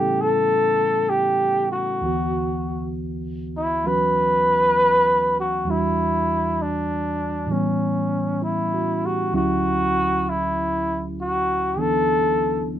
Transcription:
Already playing: tine electric piano A2 C#3 E3 G3 A3 B3 C#4 E4 A4 F#5, flugelhorn G4
0.21 flugelhorn A4
1.09 flugelhorn G4
1.71 flugelhorn F#4
2.01 tine electric piano D2 D3 E3 B3
2.06 tine electric piano F#4
3.57 flugelhorn E4
3.84 tine electric piano E3 F#3 C#4 F#4, flugelhorn B4
5.40 flugelhorn F#4
5.64 tine electric piano E2 E3 G3
5.68 tine electric piano D4 F#4, flugelhorn E4
6.62 flugelhorn D4
7.46 tine electric piano A2 E3 G3
7.51 tine electric piano B3 C#4, flugelhorn C#4
8.42 tine electric piano E4, flugelhorn E4
8.74 tine electric piano F#4
9.05 flugelhorn F#4, tine electric piano G4
9.33 tine electric piano D2 D3 F#3 C#4 E4, flugelhorn F#4
10.29 flugelhorn E4
11.21 flugelhorn F#4
11.76 tine electric piano D3 E3 B3 D4, flugelhorn A4

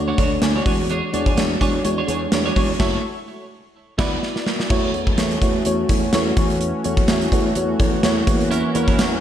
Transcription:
Already playing: fretless electric bass D2, fm electric piano D3 A3 D4 F#4 C#5
0.08 clean electric guitar D4 F#4 C#5
0.18 fretless electric bass D2, fm electric piano A3 D4 F#4 C#5, clean electric guitar D4 F#4 C#5, kick, closed hi-hat
0.32 muted clean electric guitar stroke
0.42 fretless electric bass D2, fm electric piano A3 D4 F#4 C#5 G#5, muted clean electric guitar stroke, snare, closed hi-hat
0.56 clean electric guitar D4 F#4 C#5
0.66 fretless electric bass E2, fm electric piano E3 G#3 D4 F#4 C#5 F#5, clean electric guitar D4 G#4 C#5, kick, open hi-hat
0.80 muted clean electric guitar stroke
0.90 clean electric guitar D4 G#4 C#5, closed hi-hat
1.03 muted clean electric guitar stroke
1.13 fretless electric bass E2, fm electric piano G#3 D4 F#4 C#5, clean electric guitar D4 G#4 C#5, closed hi-hat
1.26 clean electric guitar D4 G#4 C#5, kick
1.36 fretless electric bass E2, fm electric piano G#3 D4 F#4 C#5, snare, closed hi-hat
1.51 muted clean electric guitar stroke
1.61 fretless electric bass E2, fm electric piano G#3 D4 F#4 C#5, clean electric guitar D4 G#4 C#5, kick, closed hi-hat
1.74 muted clean electric guitar stroke
1.84 fretless electric bass E2, fm electric piano G#3 D4 F#4 C#5, muted clean electric guitar stroke, closed hi-hat
1.98 clean electric guitar D4 G#4 C#5
2.07 fretless electric bass E2, fm electric piano G#3 D4 F#4 C#5, clean electric guitar D4 G#4 C#5, closed hi-hat
2.22 muted clean electric guitar stroke
2.32 fretless electric bass E2, fm electric piano G#3 D4 F#4 C#5, muted clean electric guitar stroke, snare, closed hi-hat
2.46 clean electric guitar D4 G#4 C#5
2.56 fretless electric bass E2, fm electric piano G#3 D4 F#4 C#5, clean electric guitar D4 G#4 C#5, kick, open hi-hat
2.69 muted clean electric guitar stroke
2.79 fretless electric bass F#1, fm electric piano A3 E4 F#4 C#5, clean electric guitar E4 A4 C#5, kick, snare, crash
3.98 fretless electric bass D2, fm electric piano B3 E4 F#4 D5, clean electric guitar E4 F#4 B4, kick, snare, crash
4.23 snare
4.36 snare
4.46 snare
4.60 snare
4.70 fretless electric bass E2, fm electric piano E3 A3 E4 F#4 C#5, analog synth pad E3 A3 C#4 F#4, kick, crash
4.93 fretless electric bass E2, fm electric piano A3 E4 F#4 C#5, closed hi-hat
5.07 kick
5.18 fretless electric bass E2, fm electric piano A3 E4 F#4 C#5, snare, closed hi-hat
5.31 closed hi-hat
5.41 fretless electric bass E2, fm electric piano A3 E4 F#4 C#5, kick, closed hi-hat
5.65 fretless electric bass E2, fm electric piano A3 E4 F#4 C#5, closed hi-hat
5.89 fretless electric bass E2, fm electric piano A3 E4 F#4 C#5, kick, closed hi-hat
6.13 fretless electric bass E2, fm electric piano A3 E4 F#4 C#5, snare, closed hi-hat
6.37 fretless electric bass E2, fm electric piano E3 A3 E4 F#4 C#5, analog synth pad A3, kick, closed hi-hat
6.50 closed hi-hat
6.61 closed hi-hat
6.84 fretless electric bass E2, fm electric piano A3 E4 F#4 C#5, closed hi-hat
6.97 kick
7.08 fretless electric bass E2, fm electric piano A3 E4 F#4 C#5, snare, closed hi-hat
7.21 closed hi-hat
7.32 fretless electric bass E2, fm electric piano A3 E4 F#4 C#5, kick, closed hi-hat
7.55 fretless electric bass E2, fm electric piano A3 E4 F#4 C#5, closed hi-hat
7.79 fretless electric bass E2, fm electric piano A3 E4 F#4 C#5, kick, closed hi-hat
8.03 fretless electric bass E2, fm electric piano A3 E4 F#4 C#5, snare, closed hi-hat
8.27 fretless electric bass E2, fm electric piano E3 A#3 E4 F#4 C#5, analog synth pad A#3 C#4, kick, closed hi-hat
8.40 closed hi-hat
8.51 clean electric guitar C#4 E4 A#4, closed hi-hat
8.64 muted clean electric guitar stroke
8.75 fretless electric bass E2, fm electric piano A#3 E4 F#4 C#5, clean electric guitar C#4 E4 A#4, closed hi-hat
8.88 clean electric guitar C#4 E4 A#4, kick
8.98 fretless electric bass E2, fm electric piano A#3 E4 F#4 C#5, snare, closed hi-hat, tambourine
9.12 muted clean electric guitar stroke

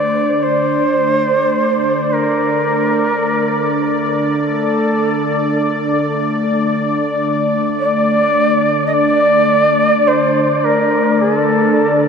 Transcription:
Already playing: analog synth pad D3 A3 D4 D5, shakuhachi D5
0.43 shakuhachi C5
2.13 shakuhachi A#4
4.39 shakuhachi A4
7.80 shakuhachi D5
8.86 shakuhachi D#5
8.94 shakuhachi D5
10.08 shakuhachi C5
10.64 shakuhachi A#4
11.22 shakuhachi G#4
11.37 shakuhachi A4

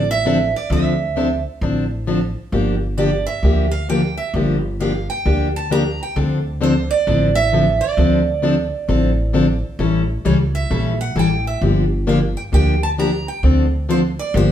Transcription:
Already playing: upright bass A1
0.11 steel-string acoustic guitar E5
0.25 steel-string acoustic guitar D3 F3 C4 D4 A4
0.56 steel-string acoustic guitar D5
0.70 upright bass D2, steel-string acoustic guitar D3 F3 C4 D4 A4 E5
1.16 steel-string acoustic guitar D3 F3 C4 D4 A4
1.61 upright bass A1, steel-string acoustic guitar D3 F3 C4 D4 A4
2.07 steel-string acoustic guitar D3 F3 C4 D4 A4
2.52 upright bass G1, steel-string acoustic guitar D3 F3 A#3 D4 G4
2.98 steel-string acoustic guitar D3 F3 A#3 D4 G4 D5
3.27 steel-string acoustic guitar E5
3.43 upright bass D2, steel-string acoustic guitar D3 F3 A#3 D4 G4
3.71 steel-string acoustic guitar F5
3.89 steel-string acoustic guitar D3 F3 A#3 D4 G4 G5
4.18 steel-string acoustic guitar E5
4.34 upright bass G1, steel-string acoustic guitar D3 F3 A#3 D4 G4
4.80 steel-string acoustic guitar D3 F3 A#3 D4 G4 F5
5.10 steel-string acoustic guitar G5
5.25 upright bass D2, steel-string acoustic guitar D3 F3 A#3 D4 G4
5.56 steel-string acoustic guitar A5
5.71 steel-string acoustic guitar D3 F3 A#3 D4 G4 A#5
6.03 steel-string acoustic guitar G5
6.16 upright bass D2, steel-string acoustic guitar D3 F3 C4 D4 A4
6.61 steel-string acoustic guitar D3 F3 C4 D4 A4 C5
6.91 steel-string acoustic guitar D5
7.07 upright bass A1, steel-string acoustic guitar D3 F3 C4 D4 A4
7.35 steel-string acoustic guitar E5
7.53 steel-string acoustic guitar D3 F3 C4 D4 A4
7.81 steel-string acoustic guitar D5
7.97 upright bass D2, steel-string acoustic guitar D3 F3 C4 D4 A4
8.42 steel-string acoustic guitar D3 F3 C4 D4 A4
8.88 upright bass A1, steel-string acoustic guitar D3 F3 C4 D4 A4
9.33 steel-string acoustic guitar D3 F3 C4 D4 A4
9.79 upright bass A1, steel-string acoustic guitar E3 G3 C#4 E4 A4
10.25 upright bass C#2, steel-string acoustic guitar E3 G3 C#4 E4 A4 C#5
10.55 steel-string acoustic guitar E5
10.70 upright bass A#1, steel-string acoustic guitar E3 G3 C#4 E4 A4
11.01 steel-string acoustic guitar F#5
11.16 upright bass A1, steel-string acoustic guitar E3 G3 C#4 E4 A4 G5
11.47 steel-string acoustic guitar E5
11.61 upright bass G1, steel-string acoustic guitar D3 F3 A#3 D4 G4
12.07 steel-string acoustic guitar D3 F3 A#3 D4 G4 F5
12.37 steel-string acoustic guitar G5
12.52 upright bass D2, steel-string acoustic guitar D3 F3 A#3 D4 G4 G5
12.83 steel-string acoustic guitar A5
12.98 steel-string acoustic guitar D3 F3 A#3 D4 G4 A#5
13.28 steel-string acoustic guitar G5
13.43 upright bass D2, steel-string acoustic guitar D3 F3 C4 D4 A4
13.89 steel-string acoustic guitar D3 F3 C4 D4 A4 C5
14.19 steel-string acoustic guitar D5
14.34 upright bass G1, steel-string acoustic guitar D3 F3 A#3 D4 G4 C5

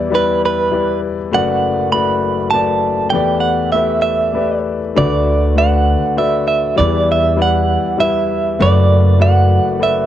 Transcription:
Already playing: grand piano E2 E3 G3 E4 B4 D5, clean electric guitar D5
0.10 grand piano G3 E4 B4 D5
0.15 clean electric guitar B4
0.45 clean electric guitar B4
0.71 grand piano G3 E4 B4 D5
1.31 grand piano F#1 F#2 A3 F#4 B4 D5, clean electric guitar F#5
1.92 grand piano A3 F#4 B4 D5, clean electric guitar B5
2.50 grand piano A3 F#4 B4 D5, clean electric guitar A5
3.10 grand piano E2 E3 A3 G4 B4, clean electric guitar G5
3.14 grand piano D5
3.40 clean electric guitar F#5
3.72 grand piano A3 G4 B4 E5, clean electric guitar E5
4.02 clean electric guitar E5
4.33 grand piano A3 G4 B4 D5
4.96 grand piano D2 D3 A3 F#4 B4 D5, upright bass D2, clean electric guitar D5
5.55 grand piano A3 F#4 B4 D5, clean electric guitar F#5
6.17 grand piano A3 F#4 B4 D5, clean electric guitar E5
6.48 clean electric guitar E5
6.76 grand piano E2 E3 G3 E4 B4 D5, upright bass E2, clean electric guitar D5
7.12 clean electric guitar E5
7.36 grand piano G3 E4 B4 D5
7.42 clean electric guitar F#5
7.97 grand piano G3 E4 B4 E5, clean electric guitar E5
8.59 grand piano F#1 F#2 A3 F#4 B4 D5, upright bass F#2, clean electric guitar D5
9.19 grand piano A3 F#4 B4 D5, clean electric guitar F#5
9.79 grand piano A3 F#4 B4 D5, clean electric guitar E5

